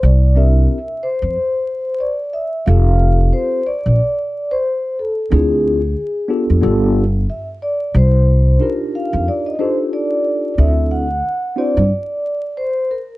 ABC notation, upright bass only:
X:1
M:4/4
L:1/16
Q:"Swing 16ths" 1/4=91
K:Cmix
V:1 name="Upright bass" clef=bass
C,,4 z3 F,, z8 | F,,,4 z3 B,,, z8 | D,,4 z3 F,, G,,,4 z4 | C,,4 z3 F,, z8 |
D,,4 z3 G,, z8 |]